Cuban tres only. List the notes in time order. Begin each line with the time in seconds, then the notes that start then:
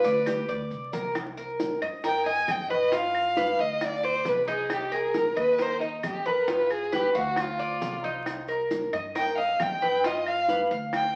0.05 D5
0.26 G4
0.49 D5
0.93 A#4
1.37 A#4
1.82 D#5
2.04 A#4
2.26 D#5
2.70 B4
2.92 F4
3.37 B4
3.59 F5
4.03 D5
4.48 D#4
4.92 A#4
5.36 D#5
5.58 A#4
5.81 D#5
6.26 B4
6.48 F4
6.92 B4
7.15 F5
7.59 D5
8.04 D#4
8.48 A#4
8.93 D#5
9.15 A#4
9.38 D#5
9.82 B4
10.04 F4
10.49 B4
10.71 F5